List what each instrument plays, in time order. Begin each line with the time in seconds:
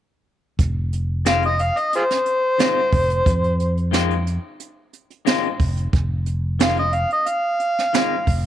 0.59 fingered electric bass F1, kick, closed hi-hat
0.93 closed hi-hat
1.25 clean electric guitar D#3 G#3 C4 F4, harmonica F5, snare, closed hi-hat
1.43 harmonica D#5, closed hi-hat
1.59 harmonica F5, closed hi-hat
1.77 harmonica D#5, closed hi-hat
1.93 harmonica F4 G#4 C5, closed hi-hat
2.11 snare
2.26 closed hi-hat
2.58 clean electric guitar D#3 G#3 C4 F4, snare, closed hi-hat
2.92 fingered electric bass F1, kick, open hi-hat
3.10 closed hi-hat
3.26 fingered electric bass F2, kick, closed hi-hat
3.44 closed hi-hat
3.60 closed hi-hat
3.77 closed hi-hat
3.91 clean electric guitar D#3 G#3 C4 F4, snare, closed hi-hat
4.11 closed hi-hat
4.27 closed hi-hat
4.60 closed hi-hat
4.93 closed hi-hat
5.10 closed hi-hat
5.25 clean electric guitar D#3 G#3 C4 F4, snare, closed hi-hat
5.44 closed hi-hat
5.60 fingered electric bass F1, kick, open hi-hat
5.77 closed hi-hat
5.93 fingered electric bass F1, kick, closed hi-hat
6.26 closed hi-hat
6.59 clean electric guitar D#3 G#3 C4 F4, harmonica F5, snare, closed hi-hat
6.77 harmonica D#5, closed hi-hat
6.93 harmonica F5, closed hi-hat
7.11 harmonica D#5, closed hi-hat
7.26 harmonica F5, closed hi-hat
7.60 closed hi-hat
7.79 snare
7.93 clean electric guitar D#3 G#3 C4 F4, snare, closed hi-hat
8.27 fingered electric bass F1, kick, open hi-hat